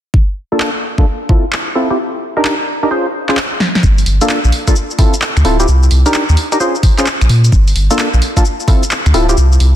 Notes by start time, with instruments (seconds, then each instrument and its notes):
0.14 kick
0.52 synth stab A#3 D4 F4 A4
0.60 clap
0.98 synth stab A#3 D4 F4 A4, kick
1.29 synth stab C4 E4 F4 A4, kick
1.52 clap
1.75 synth stab C4 E4 F4 A4
1.90 synth stab C4 E4 F4 G4
2.37 synth stab D4 D#4 G4 A#4
2.45 clap
2.83 synth stab D4 D#4 G4 A#4
2.91 synth stab C#4 F4 G#4 C5
3.29 synth stab C#4 F4 G#4 C5, clap
3.37 clap
3.60 snare
3.75 snare
3.83 sub bass G1, kick, cabasa
3.98 open hi-hat, cabasa
4.06 sub bass G1, open hi-hat
4.21 synth stab A#3 D4 F4 A4, closed hi-hat, cabasa
4.29 clap, cabasa
4.44 sub bass A#1, cabasa
4.52 open hi-hat
4.67 synth stab A#3 D4 F4 A4, finger snap, kick, closed hi-hat, cabasa
4.76 cabasa
4.91 cabasa
4.99 synth stab C4 E4 F4 A4, kick, open hi-hat
5.14 closed hi-hat, cabasa
5.22 clap, cabasa
5.37 sub bass D2, finger snap, closed hi-hat, cabasa
5.45 sub bass D1, synth stab C4 E4 F4 A4, open hi-hat
5.60 synth stab C4 E4 F4 G4, closed hi-hat, cabasa
5.68 sub bass C2, cabasa
5.83 cabasa
5.91 sub bass C2, open hi-hat
6.06 synth stab D4 D#4 G4 A#4, closed hi-hat, cabasa
6.14 clap, cabasa
6.29 sub bass D#2, cabasa
6.37 open hi-hat
6.52 synth stab D4 D#4 G4 A#4, finger snap, closed hi-hat, cabasa
6.60 synth stab C#4 F4 G#4 C5, cabasa
6.75 cabasa
6.83 kick, open hi-hat
6.98 synth stab C#4 F4 G#4 C5, clap, closed hi-hat, cabasa
7.06 clap, cabasa
7.21 sub bass A#1, finger snap, closed hi-hat, cabasa
7.29 sub bass A#2, open hi-hat
7.44 closed hi-hat, cabasa
7.52 sub bass G1, kick, cabasa
7.68 open hi-hat, cabasa
7.76 sub bass G1, open hi-hat
7.91 synth stab A#3 D4 F4 A4, closed hi-hat, cabasa
7.99 clap, cabasa
8.14 sub bass A#1, cabasa
8.22 open hi-hat
8.37 synth stab A#3 D4 F4 A4, finger snap, kick, closed hi-hat, cabasa
8.45 cabasa
8.60 cabasa
8.68 synth stab C4 E4 F4 A4, kick, open hi-hat
8.83 closed hi-hat, cabasa
8.91 clap, cabasa
9.06 sub bass D2, finger snap, closed hi-hat, cabasa
9.14 sub bass D1, synth stab C4 E4 F4 A4, open hi-hat
9.29 synth stab C4 E4 F4 G4, closed hi-hat, cabasa
9.37 sub bass C2, cabasa
9.52 cabasa
9.60 sub bass C2, open hi-hat